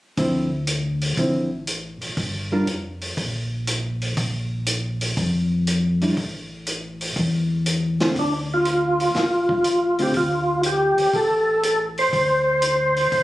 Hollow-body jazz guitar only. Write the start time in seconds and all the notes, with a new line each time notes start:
0.18 D3 F3 C4 E4
1.18 D3 F3 C4 E4
2.52 G3 D4 F4 A#4
6.02 G3 D4 E4
8.00 D3 A3 C4 F4
9.99 D3 A3 C4 F4